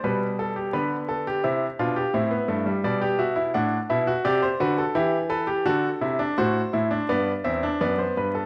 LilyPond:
<<
  \new Staff \with { instrumentName = "Grand piano" } { \time 4/4 \key g \mixolydian \tempo 4 = 85 << { b'8 a'16 g'16 b'8 a'16 g'16 e'8 f'16 g'16 e'4 | d''8 e''8 fis''8 e''8 d''16 c''16 b'16 a'16 g'8 b'8 | a'4 c''4 d''8 e''8 d''16 c''16 b'16 a'16 | } \\ { g4 b4 c'8 d'8 c'16 b16 a16 g16 | g16 g'16 fis'16 e'16 d'8 e'16 fis'16 g'8 fis'8 e'8 a'16 g'16 | fis'8 e'16 d'16 fis'8 e'16 d'16 b8 c'16 d'16 b4 | } >> }
  \new Staff \with { instrumentName = "Grand piano" } { \clef bass \time 4/4 \key g \mixolydian b,4 d4 c8 b,8 a,8 g,8 | b,4 a,8 b,8 c8 d8 e4 | d8 c8 a,8 a,8 g,8 e,8 fis,8 g,8 | }
>>